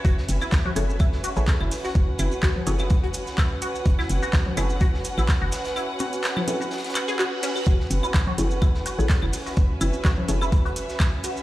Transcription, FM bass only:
X:1
M:4/4
L:1/16
Q:"Swing 16ths" 1/4=126
K:F#m
V:1 name="FM bass" clef=bass
F,,, z F,,, z A,,, z F,,,4- F,,, A,,,2 F,,, z2 | F,,, z F,,, z A,,, z F,,,4- F,,, z4 z | F,,, z F,,, z A,,, z F,,,4- F,,, A,,,2 F,,, z2 | z16 |
F,,, z F,,, z A,,, z F,,,4- F,,, A,,,2 F,,, z2 | F,,, z F,,, z A,,, z F,,,4- F,,, z4 z |]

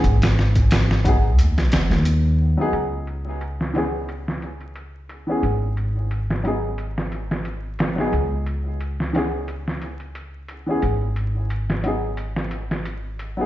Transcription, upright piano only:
X:1
M:4/4
L:1/16
Q:"Swing 16ths" 1/4=89
K:G#phr
V:1 name="Upright piano"
z6 [F,B,DG] z8 [F,B,DG] | z6 [E,B,CG] z8 [E,B,CG] | z6 [F,B,DG] z8 [F,B,DG] | z6 [E,B,CG] z8 [E,B,CG] |
z6 [F,B,DG] z8 [F,B,DG] |]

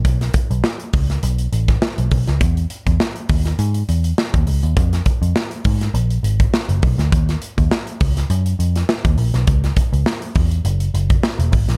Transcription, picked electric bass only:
X:1
M:4/4
L:1/16
Q:"Swing 16ths" 1/4=102
K:Ebm
V:1 name="Picked electric bass" clef=bass
=B,,,2 z B,,, z2 ^C,,2 B,,,2 =A,,,2 z B,,, B,,, C,, | =E,,2 z E,, z2 ^D,,2 ^G,,2 E,,2 z D,, _D,, ^D,, | F,,2 z F,, z2 A,,2 B,,,2 A,,,2 z G,,, C,, =D,, | E,,2 z E,, z2 D,,2 G,,2 F,,2 z E,, B,,, C,, |
D,,2 z D,, z2 _F,,2 G,,,2 G,,,2 z _F,,, A,,, B,,, |]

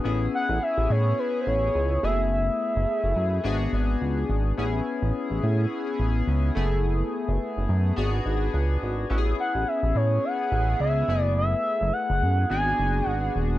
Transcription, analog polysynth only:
X:1
M:4/4
L:1/8
Q:"Swing 16ths" 1/4=106
K:A
V:1 name="Analog polysynth"
[B,CEG]6- [B,CEG] [A,B,EG]- | [A,B,EG]4 [B,DFG]4 | [B,CEG]6- [B,CEG] [A,B,EG]- | [A,B,EG]4 [B,DFG]4 |
[B,CEFG]6- [B,CEFG] [A,B,EG]- | [A,B,EG]4 [B,DFG]4 |]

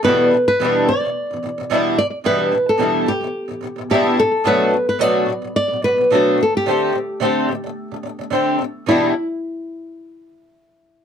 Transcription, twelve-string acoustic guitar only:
X:1
M:4/4
L:1/16
Q:"Swing 16ths" 1/4=109
K:Em
V:1 name="Twelve-string acoustic guitar" clef=bass
[E,,B,,E,G,DE]2 [E,,B,,E,]2 [E,,B,,E,G,DE]2 [E,,B,,] [E,,B,,E,]2 [E,,B,,E,] [E,,B,,E,] [E,,B,,E,] [E,,B,,E,G,DE]2 [E,,B,,E,]2 | [E,,B,,E,G,DE]2 [E,,B,,E,]2 [E,,B,,E,G,DE]2 [E,,B,,E,] [E,,B,,E,]2 [E,,B,,E,] [E,,B,,E,] [E,,B,,E,] [E,,B,,E,G,DE]2 [E,,B,,E,]2 | [B,,F,A,DF]2 [B,,F,]2 [B,,F,A,DF]2 [B,,F,] [B,,F,]2 [B,,F,] [B,,F,] [B,,F,] [B,,F,A,DF]2 [D,A,]2 | [D,A,CG]2 [D,A,]2 [D,A,CG]2 [D,A,] [D,A,]2 [D,A,] [D,A,] [D,A,] [D,A,CG]2 [D,A,]2 |
[E,,B,,E,G,DE]2 z12 z2 |]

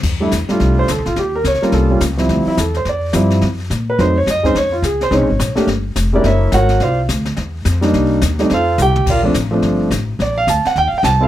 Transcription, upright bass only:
X:1
M:4/4
L:1/8
Q:"Swing" 1/4=213
K:F
V:1 name="Upright bass" clef=bass
F,,2 E,, z C,,2 (3D,, C,, A,,, | _E,,2 _D,, z C,,2 D,,2 | D,, z E,,2 F,,2 G,,2 | _G,,2 B,,2 F,,2 G,,2 |
F,,2 _D,,2 (3C,, B,,, _A,,, B,,, z | G,,,2 F,,,2 _G,,,2 _A,,,2 | C,,2 D,,2 E,,2 F,,2 | C,,2 _E,,2 F,,2 C,,2 |
B,,,2 A,,,2 G,,,2 A,,,2 | B,,,2 D,, z _E,, z C,,2 |]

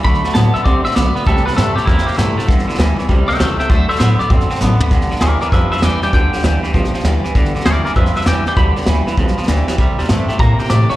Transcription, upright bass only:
X:1
M:4/4
L:1/8
Q:"Swing" 1/4=197
K:G
V:1 name="Upright bass" clef=bass
D,, F,, A,, z C, z B,,, z | C,, z G,, z E,, z G,, z | G,,, B,,, D,, z C,, z ^C,, z | D,, z A,, z F,, z A,,, z |
G,,, B,,, D,, z =F,, z E,, z | D,, z D,, z B,,, z D,, z | G,,, B,,, D,, z =F,, z E,, z | D,, z D,, z B,,, z D,, z |
C,, E,, G,, z A,, z A,, z |]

